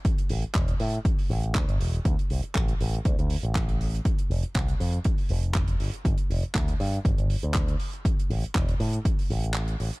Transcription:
<<
  \new Staff \with { instrumentName = "Picked electric bass" } { \clef bass \time 4/4 \key a \phrygian \tempo 4 = 120 r8 a,,16 r16 e,,16 r16 a,16 r8. a,,8 d,16 g,,16 e,,16 r16 | d,16 r16 c,16 r16 a,,16 r16 a,,16 r16 d,16 d,16 r16 a,,4 r16 | r8 f,,16 r16 c,16 r16 f,16 r8. f,,8. r16 g,,16 r16 | g,,16 r16 f,,16 r16 d,16 r16 g,16 r16 g,,16 g,,16 r16 d,8 r8. |
r8 a,,16 r16 e,,16 r16 a,16 r8. a,,8. r16 a,,16 r16 | }
  \new DrumStaff \with { instrumentName = "Drums" } \drummode { \time 4/4 <hh bd>16 hh16 hho16 hh16 <hc hh bd>16 hh16 hho16 hh16 <hh bd>16 hho16 hho16 hh16 <hc hh bd>16 hh16 hho16 hh16 | <hh bd>16 hh16 hho16 hh16 <hc hh bd>16 hh16 hho16 hh16 <hh bd>16 hh16 hho16 hh16 <hc hh bd>16 hh16 hho16 hh16 | <hh bd>16 hh16 hho16 hh16 <hc hh bd>16 hh16 hho16 hh16 <hh bd>16 hho16 hho16 hh16 <hc hh bd>16 hh16 hho16 hh16 | <hh bd>16 hh16 hho16 hh16 <hc hh bd>16 hh16 hho16 hh16 <hh bd>16 hh16 hho16 hh16 <hc hh bd>16 hh16 hho16 hh16 |
<hh bd>16 hh16 hho16 hh16 <hc hh bd>16 hh16 hho16 hh16 <hh bd>16 hho16 hho16 hh16 <hc hh>16 hh16 hho16 hh16 | }
>>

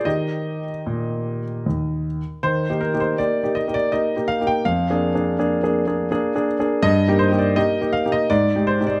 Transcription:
\new Staff \with { instrumentName = "Grand piano" } { \time 3/4 \key ees \major \tempo 4 = 81 << { ees''2~ ees''8 r8 | c''8 bes'16 c''16 d''8 ees''16 d''16 ees''8 f''16 g''16 | f''2~ f''8 r8 | ees''8 c''16 d''16 ees''8 f''16 ees''16 d''8 c''16 d''16 | } \\ { <ees ees' g'>4 bes,4 ees,4 | \tuplet 3/2 { ees8 <bes ees' g'>8 <bes ees' g'>8 <bes ees' g'>8 <bes ees' g'>8 <bes ees' g'>8 <bes ees' g'>8 <bes ees' g'>8 <bes ees' g'>8 } | \tuplet 3/2 { f,8 <bes d' aes'>8 <bes d' aes'>8 <bes d' aes'>8 <bes d' aes'>8 <bes d' aes'>8 <bes d' aes'>8 <bes d' aes'>8 <bes d' aes'>8 } | \tuplet 3/2 { g,8 <bes ees' g'>8 <bes ees' g'>8 <bes ees' g'>8 <bes ees' g'>8 <bes ees' g'>8 aes,8 <aes ees' g'>8 <aes ees' g'>8 } | } >> }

